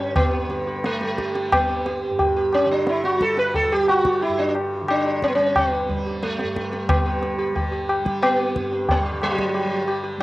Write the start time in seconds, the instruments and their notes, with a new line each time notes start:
Already playing: tanpura G2 D3 G3, sitar C#4
0.00 sitar G4
0.16 sitar B3, tabla na, tabla ge
0.47 tanpura D3, sitar G4, tabla te
0.67 sitar G4
0.84 sitar A3, tabla te
1.01 tanpura G3, sitar G4, tabla te
1.18 sitar G4, tabla ke
1.35 sitar G4, tabla te
1.52 tanpura G3, sitar B3, tabla na, tabla ge
1.69 sitar G4
1.86 sitar G4, tabla te
2.10 tanpura G2
2.19 sitar G4, tabla tin, tabla ge
2.37 sitar G4
2.53 sitar C#4, tabla na
2.64 tanpura D3
2.72 sitar D4
2.87 sitar E4, tabla te
3.04 sitar F#4, tabla te
3.19 tanpura G3, sitar A4, tabla ke
3.37 sitar B4, tabla te
3.54 sitar A4, tabla tin, tabla ge
3.72 tanpura G3, sitar G4
3.88 sitar F#4, tabla na
4.05 sitar G4, tabla ke
4.21 sitar E4, tabla tin
4.28 tanpura G2
4.39 sitar D4
4.55 tabla na
4.81 tanpura D3
4.88 sitar D4, tabla na
5.05 sitar G4
5.22 sitar C#4, tabla ke
5.28 sitar B3
5.35 tanpura G3, sitar C#4
5.39 tabla te
5.56 sitar B3, tabla na, tabla ge
5.72 sitar G4
5.89 tanpura G3, sitar G4, tabla ge
6.06 sitar G4
6.23 sitar A3, tabla te
6.39 tanpura G2, sitar G4, tabla te
6.56 tabla ke
6.72 sitar G4, tabla te
6.89 sitar B3, tabla na, tabla ge
6.97 tanpura D3
7.06 sitar G4
7.22 sitar G4, tabla te
7.38 sitar G4
7.51 tanpura G3
7.55 sitar G4, tabla tin, tabla ge
7.72 sitar G4
7.89 sitar G4, tabla na
8.05 tanpura G3, sitar G4, tabla ke
8.22 sitar B3, tabla na
8.39 sitar G4
8.56 tanpura G2, sitar G4, tabla ke
8.72 sitar G4
8.89 sitar G3, tabla tin, tabla ge
9.06 sitar G4
9.12 tanpura D3
9.22 sitar F#3, tabla na
9.38 sitar G4, tabla ke
9.54 sitar G4, tabla tin
9.65 tanpura G3
9.71 sitar G4
9.87 sitar G4, tabla na
10.04 sitar G4
10.18 tanpura G3